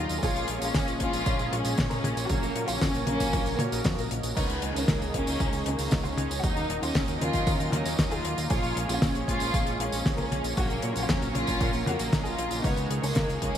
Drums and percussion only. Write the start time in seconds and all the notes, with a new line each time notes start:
0.09 closed hi-hat, tambourine
0.23 kick, closed hi-hat, tambourine
0.36 closed hi-hat, tambourine
0.48 closed hi-hat
0.62 closed hi-hat, tambourine
0.74 kick, snare, closed hi-hat, tambourine
0.88 closed hi-hat, tambourine
1.00 kick, closed hi-hat
1.13 closed hi-hat, tambourine
1.26 kick, closed hi-hat, tambourine
1.39 closed hi-hat, tambourine
1.53 closed hi-hat
1.65 closed hi-hat, tambourine
1.78 kick, snare, closed hi-hat, tambourine
1.91 closed hi-hat, high tom, tambourine
2.04 closed hi-hat, high tom
2.17 closed hi-hat, tambourine
2.29 kick, closed hi-hat, high tom, tambourine
2.43 closed hi-hat, tambourine
2.56 closed hi-hat
2.68 closed hi-hat, tambourine
2.81 kick, snare, closed hi-hat, tambourine
2.94 closed hi-hat, tambourine
3.07 closed hi-hat, high tom
3.20 kick, closed hi-hat, tambourine
3.33 kick, closed hi-hat, tambourine
3.46 closed hi-hat, tambourine
3.59 closed hi-hat, high tom
3.72 closed hi-hat, tambourine
3.84 kick, snare, closed hi-hat, tambourine
3.99 closed hi-hat, tambourine
4.11 closed hi-hat
4.23 closed hi-hat, tambourine
4.37 kick, closed hi-hat, crash, tambourine
4.50 closed hi-hat, tambourine
4.62 closed hi-hat
4.76 closed hi-hat, tambourine
4.88 kick, snare, closed hi-hat, tambourine
5.02 closed hi-hat, tambourine
5.14 kick, closed hi-hat
5.27 closed hi-hat, tambourine
5.40 kick, closed hi-hat, tambourine
5.53 closed hi-hat, tambourine
5.66 closed hi-hat
5.79 closed hi-hat, tambourine
5.91 kick, snare, closed hi-hat, tambourine
6.04 closed hi-hat, high tom, tambourine
6.18 closed hi-hat, high tom
6.31 closed hi-hat, tambourine
6.44 kick, closed hi-hat, tambourine
6.57 closed hi-hat, tambourine
6.70 closed hi-hat
6.83 closed hi-hat, tambourine
6.95 kick, snare, closed hi-hat
7.08 closed hi-hat, tambourine
7.22 closed hi-hat, high tom
7.33 kick, closed hi-hat, tambourine
7.47 kick, closed hi-hat, tambourine
7.60 closed hi-hat, tambourine
7.72 closed hi-hat, high tom
7.86 closed hi-hat, tambourine
7.98 kick, snare, closed hi-hat, tambourine
8.11 closed hi-hat, tambourine
8.25 closed hi-hat
8.38 closed hi-hat, tambourine
8.50 kick, closed hi-hat, tambourine
8.63 closed hi-hat, tambourine
8.77 closed hi-hat
8.89 closed hi-hat, tambourine
9.02 kick, snare, closed hi-hat, tambourine
9.15 closed hi-hat, tambourine
9.28 kick, closed hi-hat
9.40 closed hi-hat, tambourine
9.54 kick, closed hi-hat, tambourine
9.67 closed hi-hat, tambourine
9.80 closed hi-hat
9.92 closed hi-hat, tambourine
10.06 kick, snare, closed hi-hat
10.17 closed hi-hat, high tom, tambourine
10.32 closed hi-hat, high tom
10.44 closed hi-hat, tambourine
10.57 kick, closed hi-hat, tambourine
10.70 closed hi-hat, tambourine
10.82 closed hi-hat
10.96 closed hi-hat, tambourine
11.09 kick, snare, closed hi-hat
11.22 closed hi-hat, tambourine
11.35 closed hi-hat, high tom
11.47 kick, closed hi-hat, tambourine
11.61 kick, closed hi-hat, tambourine
11.73 closed hi-hat, tambourine
11.86 closed hi-hat, high tom
11.99 closed hi-hat, tambourine
12.13 kick, snare, closed hi-hat, tambourine
12.25 closed hi-hat, tambourine
12.39 closed hi-hat
12.51 closed hi-hat, tambourine
12.64 kick, closed hi-hat, tambourine
12.77 closed hi-hat, tambourine
12.91 closed hi-hat
13.04 closed hi-hat, tambourine
13.15 kick, snare, closed hi-hat, tambourine
13.29 closed hi-hat, tambourine
13.42 kick, closed hi-hat